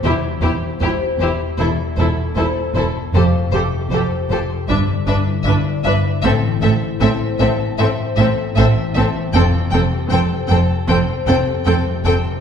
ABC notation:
X:1
M:4/4
L:1/16
Q:1/4=77
K:Am
V:1 name="Violin section"
c2 c2 c2 c2 c2 c2 c2 c2 | c2 c2 c2 c2 e2 e2 e2 e2 | e2 e2 e2 e2 e2 e2 e2 e2 | g2 g2 g2 g2 g2 g2 g2 g2 |]
V:2 name="Violin section"
G2 G2 G2 G2 A2 A2 A2 A2 | A2 A2 A2 A2 B2 B2 B2 B2 | A2 A2 A2 A2 A2 A2 A2 A2 | A2 A2 A2 A2 A2 A2 A2 A2 |]
V:3 name="Harp"
[E,,CGcg] E, C G c G g c' E,, E, A, A c A a c' | F,, C, A, G c A g c' G,, D, D E B d e b | A,, E, C E A c e a e c A E C E, C E, | F,, C, C G A c g a g c A G2 C,2 C, |]
V:4 name="Viola section"
E2 E2 E2 E2 E2 E2 E2 E2 | G2 G2 G2 G2 D2 D2 D2 D2 | C2 C2 C2 C2 C2 C2 C2 C2 | C2 C2 C2 C2 C2 C2 C2 C2 |]
V:5 name="Cello section" clef=bass
E,,2 E,,2 E,,2 E,,2 E,,2 E,,2 E,,2 E,,2 | F,,2 F,,2 F,,2 F,,2 G,,2 G,,2 G,,2 G,,2 | A,,2 A,,2 A,,2 A,,2 A,,2 A,,2 A,,2 A,,2 | F,,2 F,,2 F,,2 F,,2 F,,2 F,,2 F,,2 F,,2 |]
V:6 name="Double bass section" clef=bass
E,,,2 E,,,2 E,,,2 E,,,2 E,,,2 E,,,2 E,,,2 E,,,2 | F,,,2 F,,,2 F,,,2 F,,,2 G,,,2 G,,,2 G,,,2 G,,,2 | A,,,2 A,,,2 A,,,2 A,,,2 A,,,2 A,,,2 A,,,2 A,,,2 | F,,,2 F,,,2 F,,,2 F,,,2 F,,,2 F,,,2 F,,,2 F,,,2 |]